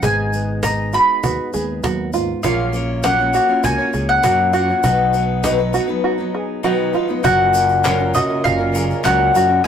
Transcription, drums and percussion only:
0.03 cajon bass, shaker
0.33 shaker
0.63 cajon bass, cajon slap, shaker
0.93 shaker
1.23 cajon bass, shaker
1.53 shaker
1.83 cajon bass, cajon slap, shaker
2.13 shaker
2.43 cajon bass, shaker
2.73 shaker
3.03 cajon bass, cajon slap, shaker
3.33 shaker
3.64 cajon bass, shaker
3.93 shaker
4.23 cajon bass, cajon slap, shaker
4.53 shaker
4.83 cajon bass, shaker
5.13 shaker
5.43 cajon bass, cajon slap, shaker
5.73 shaker
7.24 cajon bass, shaker
7.54 shaker
7.69 shaker
7.84 cajon slap, clap, shaker
8.14 cajon bass, shaker
8.45 cajon bass, shaker
8.75 shaker
8.90 shaker
9.05 cajon slap, clap, shaker
9.35 shaker

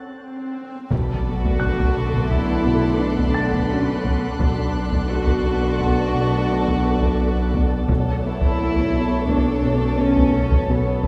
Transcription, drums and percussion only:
0.91 taiko
1.44 taiko
1.61 taiko low-mid
1.79 taiko
2.14 taiko low-mid
2.31 taiko
3.18 taiko
3.53 taiko
4.05 taiko
4.40 taiko
4.92 taiko
5.27 taiko
5.80 taiko
6.67 taiko
7.02 taiko
7.54 taiko
7.89 taiko
8.41 taiko
8.76 taiko
9.29 taiko
10.16 taiko
10.51 taiko
11.03 taiko

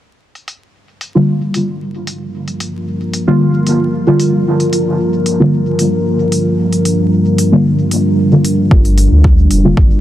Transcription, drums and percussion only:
0.35 open hi-hat
0.48 open hi-hat
1.01 open hi-hat
1.54 open hi-hat
2.07 open hi-hat
2.48 open hi-hat
2.60 open hi-hat
3.13 open hi-hat
3.67 open hi-hat
4.20 open hi-hat
4.60 open hi-hat
4.73 open hi-hat
5.26 open hi-hat
5.79 open hi-hat
6.32 open hi-hat
6.72 open hi-hat
6.85 open hi-hat
7.38 open hi-hat
7.91 open hi-hat
8.45 open hi-hat
8.71 kick
8.85 open hi-hat
8.98 open hi-hat
9.24 kick
9.51 open hi-hat
9.77 kick

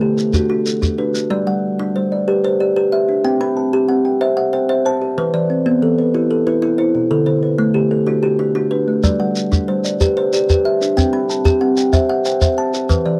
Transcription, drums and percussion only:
0.18 shekere
0.33 shekere
0.66 shekere
0.83 shekere
1.15 shekere
9.04 shekere
9.36 shekere
9.52 shekere
9.85 shekere
10.01 shekere
10.33 shekere
10.50 shekere
10.82 shekere
10.98 shekere
11.30 shekere
11.45 shekere
11.77 shekere
11.93 shekere
12.25 shekere
12.42 shekere
12.74 shekere
12.90 shekere

